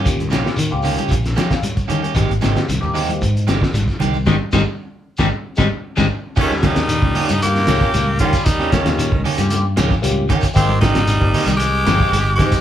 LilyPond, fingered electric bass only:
\new Staff \with { instrumentName = "Fingered electric bass" } { \clef bass \time 4/4 \key ees \mixolydian \tempo 4 = 114 ees,16 ees,16 bes,,16 r16 ees16 des,8 r16 bes,,8 r4 ees16 r16 | aes,,16 aes,,16 aes,,16 r16 c,16 ees,8. aes,8 g,,16 r16 aes,,16 r16 c,8 | aes,,16 r16 aes,,16 r4 aes,,16 r8 aes,,16 r8 aes,,16 r8 | ees,8. ees,8 des,16 r16 g,8. des,16 r16 des,8 ees16 r16 |
ees,8. ees,8 des,16 r16 g,8. des,16 r16 des,8 ees16 r16 | aes,,8. aes,,8 g,,16 r16 c,8. g,,16 r16 g,,8 aes,16 r16 | }